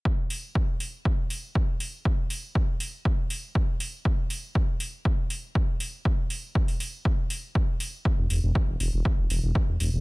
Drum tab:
HH |--o---o---o---o-|--o---o---o---o-|--o---o---o---o-|--o--oo---o---o-|
BD |o---o---o---o---|o---o---o---o---|o---o---o---o---|o---o---o---o---|

HH |--o---o---o---o-|
BD |o---o---o---o---|